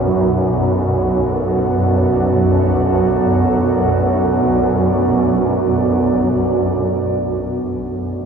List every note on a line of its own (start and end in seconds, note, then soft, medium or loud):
0.00 7.33 B1 medium
0.00 7.34 F#2 medium
0.00 8.26 B3 medium
0.00 8.26 F#4 medium
0.00 8.26 A4 medium
0.00 8.26 D5 medium
0.08 7.37 F#3 medium
0.08 7.37 F#4 medium
7.34 8.26 B1 medium
7.34 8.26 F#2 medium